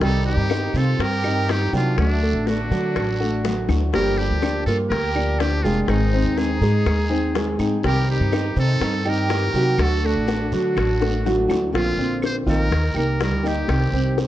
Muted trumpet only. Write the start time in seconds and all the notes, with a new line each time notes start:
0.02 A4
0.26 G4
0.77 A4
1.02 A#4
1.51 G4
1.76 F4
1.99 D4
2.48 F#4
3.94 A#4
4.18 G4
4.66 A4
4.90 A#4
5.40 G4
5.63 F4
5.83 F4
5.88 D#4
6.38 G#4
7.85 A#4
8.11 G4
8.60 A4
9.09 A#4
9.82 A4
10.06 F#4
10.54 F#4
11.75 F4
12.26 C5
12.49 A#4
12.98 A#4
13.23 A#4
13.48 G4